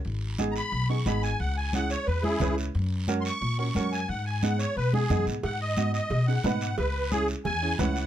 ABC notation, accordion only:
X:1
M:4/4
L:1/8
Q:1/4=178
K:G#m
V:1 name="Accordion"
z3 [ab]2 c' b g | f g f c B [EG]2 z | z3 [^bc']2 c' c' g | f g f c B G2 z |
f d2 d2 f3 | B2 G z g2 f2 |]